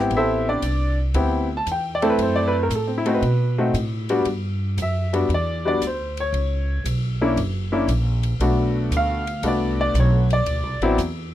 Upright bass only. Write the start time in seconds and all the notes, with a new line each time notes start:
0.10 A1
0.62 C2
1.14 D2
1.66 E2
2.18 F#2
2.69 A2
3.22 B2
3.74 A2
4.26 G2
4.77 F#2
5.29 E2
5.80 D2
6.32 C#2
6.84 B1
7.36 F#1
7.88 A#1
8.39 B1
8.91 D2
9.42 C2
9.94 B1
10.46 D2
10.63 C2
10.81 A1
10.98 E2